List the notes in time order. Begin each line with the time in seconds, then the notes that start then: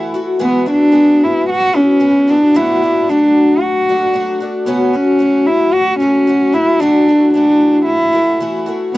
Already playing: E3 A3 E4 F#4
0.14 A3 E4 F#4
0.39 E3 G#3 B3 E4 F#4
0.66 B3 E4 F#4
0.71 D4
0.92 G#3 B3 E4 F#4
1.24 E4
1.50 F#4
1.73 B3 C#4 E4 F#4
2.00 G#3 B3 E4 F#4
2.28 B3 D4 E4 F#4
2.54 B2 F#3 A3 D4 E4 F#4
2.82 A3 D4 F#4
3.09 F#3 A3 D4 F#4
3.61 F#4
3.89 A3 D4 F#4
4.13 F#3 A3 D4 F#4
4.40 A3 D4 F#4
4.66 F#2 C#3 F#3 A3 B3 C#4 F#4
4.93 F#3 A3 C#4 F#4
5.19 F#3 A3 C#4 F#4
5.47 E4
5.74 F#4
6.00 F#3 A3 C#4 F#4
6.27 F#3 A3 C#4 F#4
6.52 F#3 A3 C#4 E4 F#4
6.80 D3 E3 A3 D4 E4 F#4
7.08 A3 E4 F#4
7.34 E3 A3 D4 E4 F#4
7.86 E4
8.13 A3 E4 F#4
8.40 E3 A3 E4 F#4
8.66 A3 E4 F#4
8.94 B3